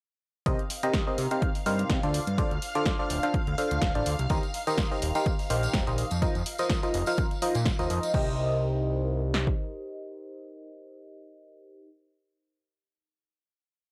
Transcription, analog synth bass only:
0.46 0.55 C2 loud
1.18 1.27 C3 loud
1.66 1.84 G2 medium
1.90 1.99 C3 medium
2.03 2.20 D2 loud
2.27 2.44 G2 medium
2.51 2.59 D2 medium
3.10 3.19 D1 loud
3.47 3.55 D2 medium
3.71 3.79 D2 medium
3.82 3.91 D1 medium
3.95 4.03 A1 loud
4.06 4.15 D2 medium
4.19 4.27 C2 medium
4.30 4.39 D#2 loud
5.02 5.11 D#1 loud
5.50 5.68 A#1 medium
5.74 5.83 D#1 loud
5.87 6.04 A#1 loud
6.11 6.28 F2 medium
6.35 6.43 F2 medium
6.94 7.03 F1 loud
7.55 7.72 A#2 loud
7.79 7.87 D#2 medium
7.90 7.99 F2 medium
8.14 9.54 C2 loud

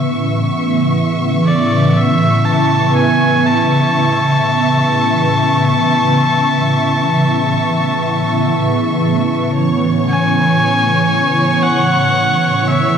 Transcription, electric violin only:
1.46 1.99 D5 medium
1.97 2.47 E5 medium
2.46 2.96 A5 medium
2.97 3.48 G#5 medium
3.47 8.55 A5 medium
10.09 11.64 G#5 loud
11.62 12.69 F#5 medium
12.68 12.98 E5 medium

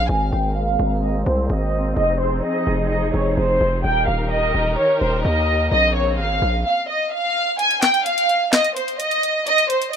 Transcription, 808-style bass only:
0.09 0.32 G#1 loud
0.33 0.78 G#1 loud
0.79 1.24 G#1 loud
1.26 1.49 C2 loud
1.50 1.95 G#1 loud
1.97 2.42 F1 loud
2.67 3.12 F1 loud
3.14 3.36 F1 loud
3.37 3.60 F1 loud
3.61 3.83 F1 loud
3.84 4.07 D#1 loud
4.08 4.53 D#1 loud
4.54 4.77 D#1 loud
5.01 5.24 D#1 loud
5.25 5.70 D#2 loud
5.72 6.20 A#1 loud
6.19 6.41 G#1 loud
6.42 6.64 A#1 loud

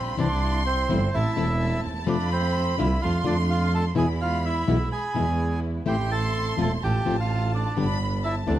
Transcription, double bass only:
0.00 0.18 A#1 medium
0.19 0.86 C2 medium
0.91 1.10 G1 loud
1.14 1.33 A1 medium
1.37 1.84 E1 loud
1.85 2.08 D#2 medium
2.08 2.75 F2 medium
2.79 2.98 C2 loud
3.03 3.22 F2 medium
3.26 3.93 F2 loud
3.97 4.64 E2 medium
4.68 4.88 B1 medium
5.15 5.83 E2 medium
5.87 6.55 A1 medium
6.58 6.78 E1 medium
6.83 7.03 A1 medium
7.06 7.74 A1 loud
7.77 8.44 G1 medium
8.48 8.59 D2 medium

